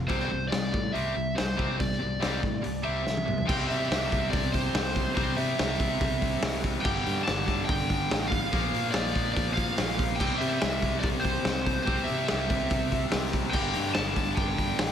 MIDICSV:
0, 0, Header, 1, 5, 480
1, 0, Start_track
1, 0, Tempo, 421941
1, 109, Time_signature, 4, 2, 24, 8
1, 8749, Tempo, 417827
1, 17053, End_track
2, 0, Start_track
2, 0, Title_t, "Lead electric guitar"
2, 0, Program_c, 0, 29
2, 92, Note_on_c, 0, 72, 82
2, 543, Note_off_c, 0, 72, 0
2, 548, Note_on_c, 0, 74, 85
2, 1052, Note_on_c, 0, 76, 79
2, 1067, Note_off_c, 0, 74, 0
2, 1551, Note_on_c, 0, 72, 91
2, 1559, Note_off_c, 0, 76, 0
2, 2044, Note_off_c, 0, 72, 0
2, 2048, Note_on_c, 0, 74, 74
2, 3236, Note_on_c, 0, 76, 91
2, 3441, Note_off_c, 0, 74, 0
2, 3956, Note_off_c, 0, 76, 0
2, 3960, Note_on_c, 0, 79, 88
2, 4186, Note_off_c, 0, 79, 0
2, 4191, Note_on_c, 0, 76, 89
2, 4896, Note_on_c, 0, 74, 92
2, 4938, Note_off_c, 0, 76, 0
2, 5144, Note_off_c, 0, 74, 0
2, 5149, Note_on_c, 0, 72, 86
2, 5842, Note_off_c, 0, 72, 0
2, 5856, Note_on_c, 0, 72, 81
2, 6090, Note_off_c, 0, 72, 0
2, 6103, Note_on_c, 0, 76, 97
2, 7500, Note_off_c, 0, 76, 0
2, 7753, Note_on_c, 0, 79, 104
2, 8225, Note_off_c, 0, 79, 0
2, 8230, Note_on_c, 0, 81, 108
2, 8700, Note_off_c, 0, 81, 0
2, 8705, Note_on_c, 0, 79, 104
2, 9423, Note_on_c, 0, 77, 100
2, 9471, Note_off_c, 0, 79, 0
2, 10147, Note_off_c, 0, 77, 0
2, 10152, Note_on_c, 0, 74, 95
2, 10609, Note_off_c, 0, 74, 0
2, 10623, Note_on_c, 0, 74, 93
2, 10865, Note_off_c, 0, 74, 0
2, 10869, Note_on_c, 0, 77, 91
2, 11567, Note_off_c, 0, 77, 0
2, 11585, Note_on_c, 0, 79, 93
2, 11833, Note_on_c, 0, 76, 94
2, 11858, Note_off_c, 0, 79, 0
2, 12542, Note_off_c, 0, 76, 0
2, 12546, Note_on_c, 0, 74, 91
2, 12618, Note_off_c, 0, 74, 0
2, 12790, Note_on_c, 0, 72, 98
2, 13491, Note_off_c, 0, 72, 0
2, 13505, Note_on_c, 0, 72, 88
2, 13744, Note_on_c, 0, 76, 93
2, 13752, Note_off_c, 0, 72, 0
2, 15162, Note_off_c, 0, 76, 0
2, 15428, Note_on_c, 0, 79, 93
2, 15926, Note_off_c, 0, 79, 0
2, 15930, Note_on_c, 0, 81, 93
2, 16386, Note_off_c, 0, 81, 0
2, 16413, Note_on_c, 0, 79, 94
2, 17053, Note_off_c, 0, 79, 0
2, 17053, End_track
3, 0, Start_track
3, 0, Title_t, "Distorted electric guitar"
3, 0, Program_c, 1, 30
3, 97, Note_on_c, 1, 48, 85
3, 106, Note_on_c, 1, 55, 103
3, 110, Note_on_c, 1, 60, 100
3, 330, Note_off_c, 1, 48, 0
3, 334, Note_off_c, 1, 55, 0
3, 337, Note_off_c, 1, 60, 0
3, 346, Note_on_c, 1, 48, 63
3, 347, Note_on_c, 1, 55, 69
3, 555, Note_off_c, 1, 48, 0
3, 559, Note_off_c, 1, 55, 0
3, 569, Note_on_c, 1, 48, 75
3, 572, Note_on_c, 1, 55, 77
3, 797, Note_off_c, 1, 48, 0
3, 799, Note_off_c, 1, 55, 0
3, 811, Note_on_c, 1, 48, 72
3, 822, Note_on_c, 1, 55, 81
3, 1039, Note_off_c, 1, 48, 0
3, 1044, Note_off_c, 1, 55, 0
3, 1065, Note_on_c, 1, 48, 91
3, 1073, Note_on_c, 1, 55, 97
3, 1076, Note_on_c, 1, 60, 95
3, 1291, Note_off_c, 1, 48, 0
3, 1296, Note_off_c, 1, 55, 0
3, 1301, Note_off_c, 1, 60, 0
3, 1305, Note_on_c, 1, 48, 64
3, 1310, Note_on_c, 1, 55, 70
3, 1524, Note_off_c, 1, 48, 0
3, 1529, Note_off_c, 1, 55, 0
3, 1537, Note_on_c, 1, 48, 67
3, 1544, Note_on_c, 1, 55, 73
3, 1763, Note_off_c, 1, 48, 0
3, 1766, Note_off_c, 1, 55, 0
3, 1785, Note_on_c, 1, 48, 80
3, 1786, Note_on_c, 1, 55, 79
3, 1798, Note_on_c, 1, 60, 83
3, 2007, Note_off_c, 1, 48, 0
3, 2013, Note_off_c, 1, 55, 0
3, 2020, Note_on_c, 1, 48, 76
3, 2024, Note_off_c, 1, 60, 0
3, 2027, Note_on_c, 1, 55, 77
3, 2245, Note_off_c, 1, 48, 0
3, 2249, Note_off_c, 1, 55, 0
3, 2265, Note_on_c, 1, 48, 61
3, 2273, Note_on_c, 1, 55, 72
3, 2488, Note_off_c, 1, 48, 0
3, 2492, Note_off_c, 1, 55, 0
3, 2504, Note_on_c, 1, 48, 81
3, 2515, Note_on_c, 1, 55, 92
3, 2517, Note_on_c, 1, 60, 96
3, 2728, Note_off_c, 1, 48, 0
3, 2732, Note_off_c, 1, 55, 0
3, 2741, Note_on_c, 1, 48, 73
3, 2744, Note_off_c, 1, 60, 0
3, 2746, Note_on_c, 1, 55, 78
3, 2967, Note_off_c, 1, 48, 0
3, 2969, Note_off_c, 1, 55, 0
3, 2984, Note_on_c, 1, 48, 71
3, 2985, Note_on_c, 1, 55, 82
3, 3208, Note_off_c, 1, 48, 0
3, 3209, Note_off_c, 1, 55, 0
3, 3222, Note_on_c, 1, 48, 78
3, 3230, Note_on_c, 1, 55, 85
3, 3237, Note_on_c, 1, 60, 91
3, 3439, Note_off_c, 1, 48, 0
3, 3444, Note_off_c, 1, 55, 0
3, 3453, Note_on_c, 1, 48, 59
3, 3458, Note_on_c, 1, 55, 70
3, 3465, Note_off_c, 1, 60, 0
3, 3683, Note_off_c, 1, 48, 0
3, 3685, Note_off_c, 1, 55, 0
3, 3698, Note_on_c, 1, 48, 55
3, 3703, Note_on_c, 1, 55, 60
3, 3915, Note_off_c, 1, 48, 0
3, 3928, Note_off_c, 1, 55, 0
3, 3929, Note_on_c, 1, 48, 97
3, 3942, Note_on_c, 1, 55, 102
3, 3958, Note_on_c, 1, 60, 110
3, 5841, Note_off_c, 1, 48, 0
3, 5855, Note_on_c, 1, 48, 94
3, 5864, Note_off_c, 1, 60, 0
3, 5869, Note_off_c, 1, 55, 0
3, 5873, Note_on_c, 1, 55, 100
3, 5882, Note_on_c, 1, 60, 104
3, 7766, Note_off_c, 1, 48, 0
3, 7766, Note_on_c, 1, 43, 92
3, 7775, Note_off_c, 1, 55, 0
3, 7776, Note_on_c, 1, 50, 106
3, 7780, Note_off_c, 1, 60, 0
3, 7791, Note_on_c, 1, 55, 106
3, 9684, Note_off_c, 1, 43, 0
3, 9687, Note_off_c, 1, 50, 0
3, 9692, Note_on_c, 1, 46, 99
3, 9696, Note_off_c, 1, 55, 0
3, 9706, Note_on_c, 1, 53, 104
3, 9722, Note_on_c, 1, 58, 109
3, 11611, Note_off_c, 1, 46, 0
3, 11618, Note_off_c, 1, 53, 0
3, 11622, Note_on_c, 1, 48, 98
3, 11626, Note_off_c, 1, 58, 0
3, 11635, Note_on_c, 1, 55, 104
3, 11646, Note_on_c, 1, 60, 104
3, 13520, Note_off_c, 1, 48, 0
3, 13533, Note_on_c, 1, 48, 90
3, 13543, Note_off_c, 1, 55, 0
3, 13547, Note_off_c, 1, 60, 0
3, 13547, Note_on_c, 1, 55, 108
3, 13562, Note_on_c, 1, 60, 104
3, 15448, Note_off_c, 1, 48, 0
3, 15450, Note_on_c, 1, 43, 102
3, 15454, Note_off_c, 1, 55, 0
3, 15462, Note_off_c, 1, 60, 0
3, 15469, Note_on_c, 1, 50, 100
3, 15479, Note_on_c, 1, 55, 105
3, 17053, Note_off_c, 1, 43, 0
3, 17053, Note_off_c, 1, 50, 0
3, 17053, Note_off_c, 1, 55, 0
3, 17053, End_track
4, 0, Start_track
4, 0, Title_t, "Picked electric bass"
4, 0, Program_c, 2, 34
4, 114, Note_on_c, 2, 36, 82
4, 316, Note_off_c, 2, 36, 0
4, 379, Note_on_c, 2, 36, 83
4, 570, Note_off_c, 2, 36, 0
4, 611, Note_on_c, 2, 36, 83
4, 806, Note_off_c, 2, 36, 0
4, 844, Note_on_c, 2, 45, 83
4, 1043, Note_off_c, 2, 45, 0
4, 1088, Note_on_c, 2, 36, 90
4, 1286, Note_off_c, 2, 36, 0
4, 1327, Note_on_c, 2, 36, 80
4, 1525, Note_off_c, 2, 36, 0
4, 1594, Note_on_c, 2, 36, 82
4, 1781, Note_off_c, 2, 36, 0
4, 1809, Note_on_c, 2, 36, 82
4, 2007, Note_off_c, 2, 36, 0
4, 2055, Note_on_c, 2, 36, 81
4, 2251, Note_off_c, 2, 36, 0
4, 2310, Note_on_c, 2, 36, 76
4, 2500, Note_off_c, 2, 36, 0
4, 2554, Note_on_c, 2, 36, 78
4, 2742, Note_off_c, 2, 36, 0
4, 2766, Note_on_c, 2, 45, 84
4, 2966, Note_off_c, 2, 45, 0
4, 3028, Note_on_c, 2, 36, 89
4, 3219, Note_off_c, 2, 36, 0
4, 3268, Note_on_c, 2, 36, 84
4, 3459, Note_off_c, 2, 36, 0
4, 3501, Note_on_c, 2, 36, 81
4, 3695, Note_off_c, 2, 36, 0
4, 3737, Note_on_c, 2, 36, 78
4, 3933, Note_off_c, 2, 36, 0
4, 3979, Note_on_c, 2, 36, 90
4, 4164, Note_off_c, 2, 36, 0
4, 4216, Note_on_c, 2, 48, 79
4, 4402, Note_off_c, 2, 48, 0
4, 4443, Note_on_c, 2, 36, 88
4, 4634, Note_off_c, 2, 36, 0
4, 4693, Note_on_c, 2, 36, 96
4, 4880, Note_off_c, 2, 36, 0
4, 4935, Note_on_c, 2, 36, 95
4, 5313, Note_off_c, 2, 36, 0
4, 5400, Note_on_c, 2, 36, 81
4, 5783, Note_off_c, 2, 36, 0
4, 5885, Note_on_c, 2, 36, 88
4, 6074, Note_off_c, 2, 36, 0
4, 6120, Note_on_c, 2, 48, 82
4, 6311, Note_off_c, 2, 48, 0
4, 6366, Note_on_c, 2, 36, 90
4, 6554, Note_off_c, 2, 36, 0
4, 6597, Note_on_c, 2, 36, 90
4, 6788, Note_off_c, 2, 36, 0
4, 6841, Note_on_c, 2, 36, 93
4, 7221, Note_off_c, 2, 36, 0
4, 7317, Note_on_c, 2, 36, 86
4, 7698, Note_off_c, 2, 36, 0
4, 7799, Note_on_c, 2, 31, 93
4, 7987, Note_off_c, 2, 31, 0
4, 8040, Note_on_c, 2, 43, 85
4, 8227, Note_off_c, 2, 43, 0
4, 8288, Note_on_c, 2, 31, 92
4, 8472, Note_off_c, 2, 31, 0
4, 8509, Note_on_c, 2, 31, 94
4, 8700, Note_off_c, 2, 31, 0
4, 8754, Note_on_c, 2, 31, 98
4, 9136, Note_off_c, 2, 31, 0
4, 9235, Note_on_c, 2, 33, 83
4, 9618, Note_off_c, 2, 33, 0
4, 9718, Note_on_c, 2, 34, 95
4, 9908, Note_off_c, 2, 34, 0
4, 9946, Note_on_c, 2, 46, 80
4, 10141, Note_off_c, 2, 46, 0
4, 10191, Note_on_c, 2, 34, 85
4, 10384, Note_off_c, 2, 34, 0
4, 10438, Note_on_c, 2, 34, 91
4, 10629, Note_off_c, 2, 34, 0
4, 10674, Note_on_c, 2, 34, 89
4, 11058, Note_off_c, 2, 34, 0
4, 11165, Note_on_c, 2, 34, 80
4, 11633, Note_off_c, 2, 34, 0
4, 11633, Note_on_c, 2, 36, 83
4, 11826, Note_off_c, 2, 36, 0
4, 11873, Note_on_c, 2, 48, 83
4, 12066, Note_off_c, 2, 48, 0
4, 12127, Note_on_c, 2, 36, 86
4, 12314, Note_off_c, 2, 36, 0
4, 12354, Note_on_c, 2, 36, 94
4, 12547, Note_off_c, 2, 36, 0
4, 12592, Note_on_c, 2, 36, 93
4, 12977, Note_off_c, 2, 36, 0
4, 13073, Note_on_c, 2, 36, 84
4, 13458, Note_off_c, 2, 36, 0
4, 13556, Note_on_c, 2, 36, 98
4, 13748, Note_off_c, 2, 36, 0
4, 13813, Note_on_c, 2, 48, 88
4, 13997, Note_off_c, 2, 48, 0
4, 14059, Note_on_c, 2, 36, 82
4, 14241, Note_off_c, 2, 36, 0
4, 14285, Note_on_c, 2, 36, 91
4, 14472, Note_off_c, 2, 36, 0
4, 14518, Note_on_c, 2, 36, 95
4, 14900, Note_off_c, 2, 36, 0
4, 15005, Note_on_c, 2, 36, 88
4, 15479, Note_on_c, 2, 31, 94
4, 15496, Note_off_c, 2, 36, 0
4, 15668, Note_off_c, 2, 31, 0
4, 15727, Note_on_c, 2, 43, 82
4, 15912, Note_off_c, 2, 43, 0
4, 15962, Note_on_c, 2, 31, 87
4, 16149, Note_off_c, 2, 31, 0
4, 16188, Note_on_c, 2, 31, 87
4, 16381, Note_off_c, 2, 31, 0
4, 16423, Note_on_c, 2, 31, 99
4, 16808, Note_off_c, 2, 31, 0
4, 16917, Note_on_c, 2, 33, 83
4, 17053, Note_off_c, 2, 33, 0
4, 17053, End_track
5, 0, Start_track
5, 0, Title_t, "Drums"
5, 99, Note_on_c, 9, 46, 48
5, 110, Note_on_c, 9, 36, 101
5, 213, Note_off_c, 9, 46, 0
5, 223, Note_off_c, 9, 36, 0
5, 224, Note_on_c, 9, 38, 33
5, 338, Note_off_c, 9, 38, 0
5, 596, Note_on_c, 9, 38, 103
5, 596, Note_on_c, 9, 46, 49
5, 710, Note_off_c, 9, 38, 0
5, 710, Note_off_c, 9, 46, 0
5, 840, Note_on_c, 9, 36, 76
5, 954, Note_off_c, 9, 36, 0
5, 1084, Note_on_c, 9, 46, 51
5, 1198, Note_off_c, 9, 46, 0
5, 1571, Note_on_c, 9, 38, 113
5, 1571, Note_on_c, 9, 46, 54
5, 1684, Note_off_c, 9, 38, 0
5, 1684, Note_off_c, 9, 46, 0
5, 1810, Note_on_c, 9, 36, 80
5, 1924, Note_off_c, 9, 36, 0
5, 2049, Note_on_c, 9, 36, 105
5, 2052, Note_on_c, 9, 46, 49
5, 2163, Note_off_c, 9, 36, 0
5, 2166, Note_off_c, 9, 46, 0
5, 2180, Note_on_c, 9, 38, 30
5, 2294, Note_off_c, 9, 38, 0
5, 2531, Note_on_c, 9, 38, 101
5, 2531, Note_on_c, 9, 46, 55
5, 2645, Note_off_c, 9, 38, 0
5, 2645, Note_off_c, 9, 46, 0
5, 2766, Note_on_c, 9, 36, 70
5, 2879, Note_off_c, 9, 36, 0
5, 3002, Note_on_c, 9, 46, 60
5, 3116, Note_off_c, 9, 46, 0
5, 3488, Note_on_c, 9, 38, 61
5, 3602, Note_off_c, 9, 38, 0
5, 3609, Note_on_c, 9, 48, 66
5, 3723, Note_off_c, 9, 48, 0
5, 3730, Note_on_c, 9, 45, 82
5, 3843, Note_off_c, 9, 45, 0
5, 3844, Note_on_c, 9, 43, 80
5, 3958, Note_off_c, 9, 43, 0
5, 3970, Note_on_c, 9, 49, 107
5, 3971, Note_on_c, 9, 36, 105
5, 4083, Note_off_c, 9, 49, 0
5, 4084, Note_off_c, 9, 36, 0
5, 4212, Note_on_c, 9, 46, 60
5, 4325, Note_off_c, 9, 46, 0
5, 4457, Note_on_c, 9, 38, 104
5, 4457, Note_on_c, 9, 46, 82
5, 4571, Note_off_c, 9, 38, 0
5, 4571, Note_off_c, 9, 46, 0
5, 4690, Note_on_c, 9, 36, 88
5, 4695, Note_on_c, 9, 46, 54
5, 4804, Note_off_c, 9, 36, 0
5, 4809, Note_off_c, 9, 46, 0
5, 4929, Note_on_c, 9, 36, 115
5, 4929, Note_on_c, 9, 46, 80
5, 5043, Note_off_c, 9, 36, 0
5, 5043, Note_off_c, 9, 46, 0
5, 5163, Note_on_c, 9, 46, 58
5, 5168, Note_on_c, 9, 36, 70
5, 5276, Note_off_c, 9, 46, 0
5, 5281, Note_off_c, 9, 36, 0
5, 5402, Note_on_c, 9, 38, 121
5, 5402, Note_on_c, 9, 46, 90
5, 5516, Note_off_c, 9, 38, 0
5, 5516, Note_off_c, 9, 46, 0
5, 5641, Note_on_c, 9, 36, 89
5, 5643, Note_on_c, 9, 46, 63
5, 5755, Note_off_c, 9, 36, 0
5, 5757, Note_off_c, 9, 46, 0
5, 5875, Note_on_c, 9, 46, 82
5, 5880, Note_on_c, 9, 36, 108
5, 5989, Note_off_c, 9, 46, 0
5, 5994, Note_off_c, 9, 36, 0
5, 6114, Note_on_c, 9, 46, 63
5, 6228, Note_off_c, 9, 46, 0
5, 6363, Note_on_c, 9, 38, 113
5, 6363, Note_on_c, 9, 46, 85
5, 6477, Note_off_c, 9, 38, 0
5, 6477, Note_off_c, 9, 46, 0
5, 6594, Note_on_c, 9, 46, 61
5, 6597, Note_on_c, 9, 36, 89
5, 6708, Note_off_c, 9, 46, 0
5, 6711, Note_off_c, 9, 36, 0
5, 6836, Note_on_c, 9, 36, 116
5, 6840, Note_on_c, 9, 46, 89
5, 6950, Note_off_c, 9, 36, 0
5, 6954, Note_off_c, 9, 46, 0
5, 7076, Note_on_c, 9, 46, 61
5, 7077, Note_on_c, 9, 36, 74
5, 7190, Note_off_c, 9, 46, 0
5, 7191, Note_off_c, 9, 36, 0
5, 7310, Note_on_c, 9, 38, 127
5, 7310, Note_on_c, 9, 46, 94
5, 7424, Note_off_c, 9, 38, 0
5, 7424, Note_off_c, 9, 46, 0
5, 7554, Note_on_c, 9, 36, 86
5, 7554, Note_on_c, 9, 46, 64
5, 7668, Note_off_c, 9, 36, 0
5, 7668, Note_off_c, 9, 46, 0
5, 7789, Note_on_c, 9, 49, 98
5, 7793, Note_on_c, 9, 36, 111
5, 7903, Note_off_c, 9, 49, 0
5, 7906, Note_off_c, 9, 36, 0
5, 8036, Note_on_c, 9, 46, 62
5, 8150, Note_off_c, 9, 46, 0
5, 8277, Note_on_c, 9, 38, 116
5, 8277, Note_on_c, 9, 46, 77
5, 8390, Note_off_c, 9, 38, 0
5, 8390, Note_off_c, 9, 46, 0
5, 8508, Note_on_c, 9, 36, 82
5, 8508, Note_on_c, 9, 46, 58
5, 8621, Note_off_c, 9, 36, 0
5, 8622, Note_off_c, 9, 46, 0
5, 8748, Note_on_c, 9, 36, 125
5, 8748, Note_on_c, 9, 46, 88
5, 8863, Note_off_c, 9, 36, 0
5, 8863, Note_off_c, 9, 46, 0
5, 8988, Note_on_c, 9, 46, 52
5, 8990, Note_on_c, 9, 36, 71
5, 9103, Note_off_c, 9, 46, 0
5, 9105, Note_off_c, 9, 36, 0
5, 9235, Note_on_c, 9, 38, 117
5, 9235, Note_on_c, 9, 46, 83
5, 9350, Note_off_c, 9, 38, 0
5, 9350, Note_off_c, 9, 46, 0
5, 9471, Note_on_c, 9, 36, 85
5, 9471, Note_on_c, 9, 46, 65
5, 9586, Note_off_c, 9, 36, 0
5, 9586, Note_off_c, 9, 46, 0
5, 9712, Note_on_c, 9, 36, 108
5, 9712, Note_on_c, 9, 46, 73
5, 9827, Note_off_c, 9, 36, 0
5, 9827, Note_off_c, 9, 46, 0
5, 9955, Note_on_c, 9, 46, 71
5, 10070, Note_off_c, 9, 46, 0
5, 10183, Note_on_c, 9, 38, 114
5, 10183, Note_on_c, 9, 46, 90
5, 10298, Note_off_c, 9, 38, 0
5, 10298, Note_off_c, 9, 46, 0
5, 10432, Note_on_c, 9, 36, 81
5, 10434, Note_on_c, 9, 46, 56
5, 10547, Note_off_c, 9, 36, 0
5, 10549, Note_off_c, 9, 46, 0
5, 10671, Note_on_c, 9, 46, 89
5, 10673, Note_on_c, 9, 36, 112
5, 10786, Note_off_c, 9, 46, 0
5, 10788, Note_off_c, 9, 36, 0
5, 10911, Note_on_c, 9, 36, 80
5, 10916, Note_on_c, 9, 46, 64
5, 11026, Note_off_c, 9, 36, 0
5, 11031, Note_off_c, 9, 46, 0
5, 11150, Note_on_c, 9, 38, 119
5, 11150, Note_on_c, 9, 46, 91
5, 11265, Note_off_c, 9, 38, 0
5, 11265, Note_off_c, 9, 46, 0
5, 11392, Note_on_c, 9, 36, 92
5, 11395, Note_on_c, 9, 46, 62
5, 11507, Note_off_c, 9, 36, 0
5, 11510, Note_off_c, 9, 46, 0
5, 11634, Note_on_c, 9, 36, 116
5, 11638, Note_on_c, 9, 57, 101
5, 11749, Note_off_c, 9, 36, 0
5, 11753, Note_off_c, 9, 57, 0
5, 11875, Note_on_c, 9, 46, 63
5, 11990, Note_off_c, 9, 46, 0
5, 12111, Note_on_c, 9, 38, 119
5, 12111, Note_on_c, 9, 46, 85
5, 12226, Note_off_c, 9, 38, 0
5, 12226, Note_off_c, 9, 46, 0
5, 12342, Note_on_c, 9, 46, 56
5, 12349, Note_on_c, 9, 36, 77
5, 12457, Note_off_c, 9, 46, 0
5, 12464, Note_off_c, 9, 36, 0
5, 12582, Note_on_c, 9, 46, 85
5, 12592, Note_on_c, 9, 36, 118
5, 12697, Note_off_c, 9, 46, 0
5, 12707, Note_off_c, 9, 36, 0
5, 12831, Note_on_c, 9, 46, 54
5, 12834, Note_on_c, 9, 36, 80
5, 12946, Note_off_c, 9, 46, 0
5, 12949, Note_off_c, 9, 36, 0
5, 13068, Note_on_c, 9, 38, 116
5, 13068, Note_on_c, 9, 46, 78
5, 13183, Note_off_c, 9, 38, 0
5, 13183, Note_off_c, 9, 46, 0
5, 13314, Note_on_c, 9, 36, 88
5, 13314, Note_on_c, 9, 46, 58
5, 13429, Note_off_c, 9, 36, 0
5, 13429, Note_off_c, 9, 46, 0
5, 13555, Note_on_c, 9, 36, 111
5, 13555, Note_on_c, 9, 46, 73
5, 13670, Note_off_c, 9, 36, 0
5, 13670, Note_off_c, 9, 46, 0
5, 13784, Note_on_c, 9, 46, 60
5, 13899, Note_off_c, 9, 46, 0
5, 14027, Note_on_c, 9, 38, 113
5, 14027, Note_on_c, 9, 46, 77
5, 14141, Note_off_c, 9, 38, 0
5, 14141, Note_off_c, 9, 46, 0
5, 14271, Note_on_c, 9, 46, 62
5, 14275, Note_on_c, 9, 36, 91
5, 14386, Note_off_c, 9, 46, 0
5, 14390, Note_off_c, 9, 36, 0
5, 14503, Note_on_c, 9, 46, 83
5, 14514, Note_on_c, 9, 36, 115
5, 14618, Note_off_c, 9, 46, 0
5, 14629, Note_off_c, 9, 36, 0
5, 14757, Note_on_c, 9, 36, 74
5, 14757, Note_on_c, 9, 46, 61
5, 14872, Note_off_c, 9, 36, 0
5, 14872, Note_off_c, 9, 46, 0
5, 14983, Note_on_c, 9, 38, 124
5, 14983, Note_on_c, 9, 46, 92
5, 15098, Note_off_c, 9, 38, 0
5, 15098, Note_off_c, 9, 46, 0
5, 15224, Note_on_c, 9, 46, 65
5, 15232, Note_on_c, 9, 36, 88
5, 15339, Note_off_c, 9, 46, 0
5, 15347, Note_off_c, 9, 36, 0
5, 15459, Note_on_c, 9, 49, 104
5, 15470, Note_on_c, 9, 36, 108
5, 15574, Note_off_c, 9, 49, 0
5, 15585, Note_off_c, 9, 36, 0
5, 15699, Note_on_c, 9, 46, 68
5, 15814, Note_off_c, 9, 46, 0
5, 15936, Note_on_c, 9, 38, 117
5, 15936, Note_on_c, 9, 46, 92
5, 16051, Note_off_c, 9, 38, 0
5, 16051, Note_off_c, 9, 46, 0
5, 16182, Note_on_c, 9, 46, 61
5, 16186, Note_on_c, 9, 36, 83
5, 16297, Note_off_c, 9, 46, 0
5, 16300, Note_off_c, 9, 36, 0
5, 16416, Note_on_c, 9, 46, 83
5, 16426, Note_on_c, 9, 36, 122
5, 16531, Note_off_c, 9, 46, 0
5, 16541, Note_off_c, 9, 36, 0
5, 16668, Note_on_c, 9, 36, 75
5, 16669, Note_on_c, 9, 46, 57
5, 16783, Note_off_c, 9, 36, 0
5, 16784, Note_off_c, 9, 46, 0
5, 16905, Note_on_c, 9, 38, 122
5, 16905, Note_on_c, 9, 46, 88
5, 17019, Note_off_c, 9, 38, 0
5, 17019, Note_off_c, 9, 46, 0
5, 17053, End_track
0, 0, End_of_file